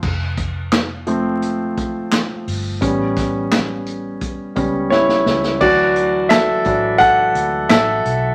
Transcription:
<<
  \new Staff \with { instrumentName = "Grand piano" } { \time 4/4 \key f \lydian \tempo 4 = 86 r1 | r2. <e' cis''>4 | \key d \major <fis' d''>4 <a' e''>4 <a' fis''>4 <a' e''>4 | }
  \new Staff \with { instrumentName = "Grand piano" } { \time 4/4 \key f \lydian r4. <f a c'>4. r4 | <g b cis'>2~ <g b cis'>8 <g b cis'>8 r4 | \key d \major <e fis d'>4. <e fis d'>8 r2 | }
  \new Staff \with { instrumentName = "Fingered electric bass" } { \clef bass \time 4/4 \key f \lydian f,,2~ f,,8 a,,4 g,,8 | a,,2~ a,,8 cis,4 cis,8 | \key d \major d,4. a,,4 d,8 a,,8 b,,8 | }
  \new DrumStaff \with { instrumentName = "Drums" } \drummode { \time 4/4 <cymc bd>8 <hh bd>8 <hc hh sn>8 hh8 hh8 <hh bd>8 <hc hh sn>8 hho8 | <hh bd>8 <hh bd sn>8 <hc hh sn>8 hh8 <hh bd>8 <hh bd>8 sn16 sn16 sn16 sn16 | <cymc bd>8 hh8 <hc hh sn>8 <hh bd>8 <hh bd>8 hh8 <hc hh sn>8 hh8 | }
>>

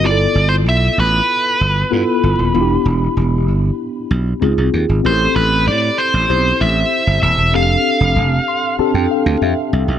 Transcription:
<<
  \new Staff \with { instrumentName = "Lead electric guitar" } { \time 4/4 \key a \minor \tempo 4 = 96 \tuplet 3/2 { d''4 c''8 } e''8 b'2~ b'8~ | b'2. r4 | c''8 b'8 d''8 c''4 e''4 e''8 | f''2 r2 | }
  \new Staff \with { instrumentName = "Tine electric piano" } { \time 4/4 \key a \minor << { r1 | r1 | r1 | r4. c'''8 a''16 g''16 f''8 e''8 e''8 | } \\ { <b e' f' g' a'>4. r4. <b e' f' a'>4 | <b d' e' f' g'>4. r4. <c' ees' f' aes'>4 | <c' e' g' a' bes'>4. r8 <c' e' g' c''>4. r8 | <c' d' g' a'>4. r8 <c' d' g' a'>4. r8 | } >> }
  \new Staff \with { instrumentName = "Slap bass" } { \clef bass \time 4/4 \key a \minor g,,8 g,,8 b,,8 a,,8 r8 g,,8 g,16 r16 g,,16 ees,,16 | e,,8 e,,8 e,,8 g,,8 r8 b,,8 des,16 c,16 ees,16 aes,,16 | a,,8 a,,8 a,8 r16 a,,16 b,,8 a,,8 r16 g,,16 ees,,16 e,,16 | f,,8 r16 f,,16 f,,8 r8. f,16 r16 d,16 f,16 r16 c,16 b,,16 | }
>>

